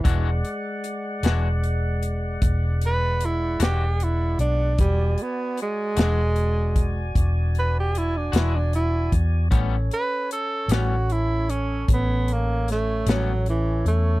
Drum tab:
HH |xxxxxxxxxxxx|xxxxxxxxxxxx|xxxxxxxxxxxx|
SD |---o-----o--|---o-----o--|---o----oo--|
BD |o-----o-----|o----oo----o|o-----o-----|